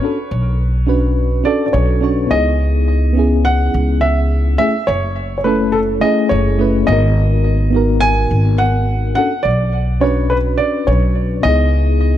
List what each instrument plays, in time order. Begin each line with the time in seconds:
Already playing: grand piano C#5
0.01 fm electric piano C#4 D4 F#4 A4
0.31 upright bass B1
0.87 fm electric piano C#4 D4 F#4 B4
1.44 fm electric piano C#4 D4 F#4 A4, grand piano D5
1.66 grand piano D5
1.73 upright bass B1, grand piano C#5
2.01 fm electric piano C#4 D4 F#4 C#5
2.27 upright bass C#2, fm electric piano B3 D#4, grand piano D#5
2.31 fm electric piano E4 G#4
3.13 fm electric piano B3 C#4 E4
3.19 fm electric piano G#4
3.45 grand piano F#5
3.74 upright bass C#2
4.01 grand piano E5
4.58 fm electric piano A3 C#4 E4 G#4, grand piano E5
4.87 upright bass F#1, grand piano C#5
5.38 grand piano C#5
5.44 fm electric piano A3 C#4 E4 A4, grand piano B4
5.72 grand piano A4
6.01 fm electric piano A3 C#4 E4 G#4, grand piano D#5
6.29 upright bass F#1, grand piano C#5
6.59 fm electric piano A3 C#4 E4 B4
6.86 upright bass G#1, fm electric piano B3 D#4, grand piano D#5
6.90 fm electric piano F#4 A#4
7.70 fm electric piano B3 D#4
7.74 fm electric piano F#4 A#4
8.01 grand piano G#5
8.31 upright bass G#1
8.58 grand piano F#5
9.15 fm electric piano C#4 D4 F#4 A4, grand piano F#5
9.43 upright bass B1, grand piano D5
10.01 fm electric piano C#4 D4 F#4 B4, grand piano C#5
10.30 grand piano B4
10.58 grand piano D5
10.87 upright bass B1, grand piano C#5
11.42 upright bass C#2, fm electric piano B3 D#4 E4, grand piano D#5
11.49 fm electric piano G#4